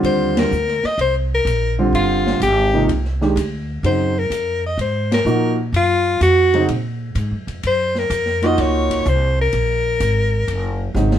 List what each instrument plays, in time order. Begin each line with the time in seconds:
Already playing: grand piano D3 G3 C4 F4
0.03 upright bass D#2, soprano saxophone C5, ride
0.37 soprano saxophone A#4, snare, ride
0.51 upright bass D2, hi-hat pedal
0.68 snare
0.83 soprano saxophone D#5, muted upright bass stroke, snare
0.98 upright bass C2, soprano saxophone C5, ride
1.34 soprano saxophone A#4
1.45 upright bass A#1, hi-hat pedal, ride
1.78 grand piano D3 G3 C4 F4
1.92 upright bass G1, soprano saxophone F4, ride
2.27 snare
2.40 upright bass G#1, soprano saxophone G4, hi-hat pedal, ride
2.74 grand piano C3 F3 A#3 D#4
2.88 upright bass C2, ride
3.05 snare
3.21 grand piano D#3 G#3 D4 G4, snare
3.36 upright bass D2, hi-hat pedal, ride
3.83 upright bass F#2, grand piano C#3 F#3 C4 D#4, soprano saxophone C5, ride
4.19 soprano saxophone A#4
4.30 upright bass F2, hi-hat pedal, ride
4.66 soprano saxophone D#5
4.77 upright bass G#2, soprano saxophone C5, ride
5.12 soprano saxophone A#4, snare, ride
5.25 upright bass A#2, grand piano F3 A#3 D#4 F#4, hi-hat pedal
5.72 upright bass F#2, soprano saxophone F4, ride
6.21 upright bass F2, soprano saxophone F#4, hi-hat pedal, ride
6.54 grand piano C#3 F#3 C4 D#4, ride
6.69 upright bass A#2, ride
7.15 upright bass G#2, hi-hat pedal, ride
7.31 upright bass F#2
7.47 upright bass F2, ride
7.63 upright bass F#2, soprano saxophone C5, ride
7.95 soprano saxophone A#4, snare
8.10 upright bass F2, hi-hat pedal, ride
8.26 snare
8.42 grand piano A#3 D#4 F4 F#4, snare, ride
8.46 soprano saxophone D#5
8.58 upright bass C#2, soprano saxophone C#5, snare, ride
8.90 kick, ride
9.06 upright bass C2, soprano saxophone C5, hi-hat pedal
9.41 soprano saxophone A#4
9.53 upright bass A#1, ride
10.00 upright bass G#1, hi-hat pedal, ride
10.48 upright bass F#1, ride
10.94 upright bass G#1, grand piano C#3 F#3 C4 D#4, snare, hi-hat pedal
11.11 snare